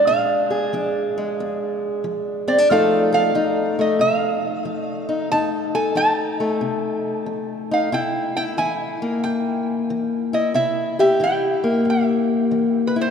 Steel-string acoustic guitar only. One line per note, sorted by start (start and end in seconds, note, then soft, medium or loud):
0.00 1.16 G#3 medium
0.07 0.68 A#2 medium
0.07 0.72 D4 medium
0.50 2.66 G#4 medium
0.73 1.34 F3 medium
0.73 2.47 D4 medium
1.18 2.70 G#3 medium
1.40 2.00 F2 medium
2.04 2.65 F3 medium
2.48 2.58 C4 medium
2.58 2.69 D4 medium
2.70 3.30 F2 medium
2.70 3.34 F3 medium
2.70 3.78 A3 medium
2.70 3.35 D#4 medium
2.70 3.12 A4 medium
3.12 5.28 A4 medium
3.35 3.96 F3 medium
3.35 5.07 D#4 medium
3.79 5.28 A3 medium
3.99 4.61 C3 medium
4.65 5.26 F3 medium
5.09 5.28 D#4 medium
5.32 5.92 F2 medium
5.32 5.94 D#4 medium
5.75 7.90 A4 medium
5.95 6.57 F3 medium
5.95 7.70 D#4 medium
6.40 7.90 A3 medium
6.61 7.22 C3 medium
7.26 7.88 F3 medium
7.71 7.90 D#4 medium
7.92 8.53 C3 medium
7.92 8.37 E4 medium
8.38 8.58 E4 medium
8.57 9.19 E3 medium
8.57 10.32 E4 medium
9.02 10.52 A#3 medium
9.24 9.84 G2 medium
9.90 10.50 E3 medium
10.33 10.52 E4 medium
10.54 11.15 C3 medium
10.54 11.20 E4 medium
10.99 13.11 G4 medium
11.20 11.81 E3 medium
11.20 12.95 E4 medium
11.64 13.11 A#3 medium
11.85 12.46 G2 medium
12.51 13.11 E3 medium
12.96 13.11 E4 medium